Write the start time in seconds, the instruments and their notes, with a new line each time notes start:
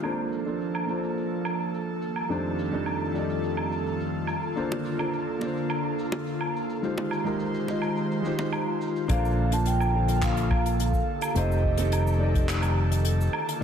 0.02 analog synth pad F3 A#3 A4, grand piano A#3 D4 F4 A4 C5, cabasa, low woodblock
0.32 cabasa
0.45 grand piano A#3 D4 F4 A4 C5, cabasa
0.61 cabasa
0.75 low woodblock
0.86 grand piano A#3 D4 F4 A4, cabasa
0.91 grand piano C5
1.03 cabasa
1.18 cabasa
1.45 cabasa, low woodblock
1.60 cabasa
1.74 cabasa
2.02 analog synth pad D#3 G3 F4, cabasa
2.16 cabasa, low woodblock
2.29 grand piano F2 A3 D4 D#4 G4 C5, cabasa
2.59 cabasa
2.72 grand piano F2 A3 D4 D#4 G4 A4, cabasa
2.86 cabasa, low woodblock
3.13 grand piano F2 A3 D#4 G4 D5, cabasa
3.18 grand piano D#5
3.30 cabasa
3.44 cabasa
3.57 low woodblock
3.72 cabasa
3.86 cabasa
4.00 cabasa
4.27 analog synth pad D3 A#3, cabasa, low woodblock
4.43 cabasa
4.55 grand piano A#3 D4 F4 A4 C5, cabasa
4.72 high bongo
4.85 cabasa
4.98 grand piano A#3 D4 F4 A4 C5, cabasa, low woodblock
5.13 cabasa
5.39 grand piano A#3 D4 F4 A4, high bongo, cabasa
5.44 grand piano C5
5.57 cabasa
5.70 cabasa, low woodblock
5.99 cabasa
6.12 high bongo, cabasa
6.27 cabasa
6.41 low woodblock
6.56 cabasa
6.70 cabasa
6.82 analog synth pad D#3 G#3 C5, grand piano G#3 D#4 F4 G4 C5, cabasa
6.98 high bongo
7.11 cabasa, low woodblock
7.24 grand piano G#3 D#4 F4 G4 A#4, cabasa
7.39 cabasa
7.54 cabasa
7.67 grand piano G#3 D#4 F4 G4 D#5, high bongo, cabasa
7.82 cabasa, low woodblock
7.97 cabasa
8.11 cabasa
8.22 grand piano G#3 D#4 F4 G4, cabasa
8.27 grand piano C5
8.39 high bongo, cabasa
8.53 cabasa, low woodblock
8.81 cabasa
8.96 cabasa
9.08 fretless electric bass A#1, analog synth pad D3 A#3 F4 A4, grand piano A#3 D4 F4 A4 C5, vibraphone F5, kick, closed hi-hat, cabasa, low woodblock
9.25 cabasa
9.51 grand piano A#3 D4 F4 A4 C5, vibraphone A5, closed hi-hat, cabasa
9.66 vibraphone G5, closed hi-hat, cabasa
9.80 cabasa, low woodblock
9.92 grand piano A#3 D4 F4 A4
9.96 grand piano C5
10.08 closed hi-hat, cabasa
10.22 vibraphone F5, kick, clap, closed hi-hat, cabasa
10.37 closed hi-hat, cabasa
10.51 kick, low woodblock
10.66 closed hi-hat, cabasa
10.80 closed hi-hat, cabasa
10.93 kick, cabasa
11.07 analog synth pad D#3 G4
11.21 closed hi-hat, cabasa, low woodblock
11.34 fretless electric bass F1, grand piano A3 C4 D#4 G4 C5, vibraphone D#5, closed hi-hat, cabasa
11.52 cabasa
11.64 kick
11.77 grand piano A3 C4 D#4 G4 A4, closed hi-hat, cabasa
11.92 closed hi-hat, cabasa, low woodblock
12.07 cabasa
12.18 grand piano A3 D#4 G4 D5
12.23 grand piano D#5
12.35 kick, closed hi-hat, cabasa
12.49 clap, closed hi-hat, cabasa
12.62 closed hi-hat, cabasa, low woodblock
12.92 closed hi-hat, cabasa
13.05 closed hi-hat, cabasa
13.21 cabasa
13.33 analog synth pad D3 A#3 F4, low woodblock
13.49 closed hi-hat, cabasa
13.60 grand piano A#3